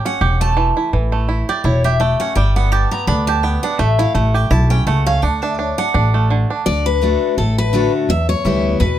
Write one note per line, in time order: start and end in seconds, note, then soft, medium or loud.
0.00 0.18 E4 medium
0.00 0.20 G4 medium
0.05 0.54 C#4 medium
0.05 0.39 F#5 loud
0.21 0.70 E1 medium
0.21 0.73 G4 medium
0.41 0.90 A3 medium
0.41 0.89 A5 loud
0.57 0.92 E3 medium
0.77 1.26 E4 medium
0.93 1.42 A1 medium
0.93 1.45 E3 medium
1.12 1.61 A3 medium
1.29 1.64 E4 medium
1.49 1.84 G4 medium
1.49 1.64 D5 medium
1.64 2.13 E1 medium
1.64 2.17 E4 medium
1.64 1.84 C#5 medium
1.84 2.33 G4 medium
1.84 2.00 E5 medium
2.00 2.36 A3 medium
2.00 2.19 G5 loud
2.20 2.37 C#4 medium
2.20 2.35 F#5 loud
2.35 2.85 G1 medium
2.35 2.88 G3 medium
2.35 2.55 G5 loud
2.56 2.91 B3 medium
2.56 2.72 F#5 medium
2.72 3.24 G4 medium
2.72 2.91 A5 loud
2.91 3.41 B3 medium
2.91 3.07 A#5 loud
3.07 3.56 D2 loud
3.07 3.60 D4 medium
3.07 3.27 B5 loud
3.27 3.77 G4 medium
3.27 3.43 A5 loud
3.43 3.80 B3 medium
3.43 3.63 G5 medium
3.63 3.80 D4 medium
3.63 3.79 F#5 loud
3.79 4.03 A1 medium
3.79 4.14 A3 medium
3.79 3.99 E5 medium
3.99 4.48 E4 medium
3.99 4.15 F5 loud
4.15 4.45 A1 loud
4.15 4.87 A3 medium
4.15 4.35 F#5 medium
4.34 4.83 G4 medium
4.34 4.51 G5 loud
4.51 4.81 B1 loud
4.51 5.03 E4 medium
4.51 4.70 A5 loud
4.70 5.06 C#4 medium
4.70 4.86 G5 loud
4.87 5.17 C#2 medium
4.87 6.14 A3 medium
4.87 5.06 F#5 medium
5.06 5.23 C#4 medium
5.06 5.22 F5 loud
5.22 5.71 D2 medium
5.22 5.41 D4 medium
5.22 5.42 F#5 loud
5.42 5.58 D4 medium
5.42 5.58 E5 medium
5.58 5.77 D4 medium
5.58 5.78 C#5 medium
5.78 5.93 D4 medium
5.78 6.26 F#5 loud
5.94 6.43 A1 loud
5.94 6.46 D4 medium
6.14 6.63 A3 medium
6.30 6.66 D3 medium
6.50 6.66 D4 medium
6.66 7.15 D2 medium
6.66 7.00 D3 medium
6.66 6.85 D5 medium
6.86 7.34 B4 medium
7.02 7.36 D3 medium
7.02 7.36 A3 medium
7.02 7.37 D4 medium
7.02 7.37 F#4 medium
7.38 7.86 A1 medium
7.38 8.06 A2 medium
7.38 7.57 A4 medium
7.58 7.91 B4 medium
7.73 8.08 D3 medium
7.73 8.08 A3 medium
7.73 8.08 D4 medium
7.73 8.09 F#4 medium
8.09 8.33 E2 medium
8.09 8.78 E2 medium
8.09 8.29 E5 medium
8.29 8.77 C#5 medium
8.45 8.76 D2 medium
8.45 8.79 E3 medium
8.45 8.80 G3 medium
8.45 8.80 B3 medium
8.45 8.80 E4 medium
8.80 8.99 E2 medium
8.80 8.99 B2 medium
8.80 8.99 B4 medium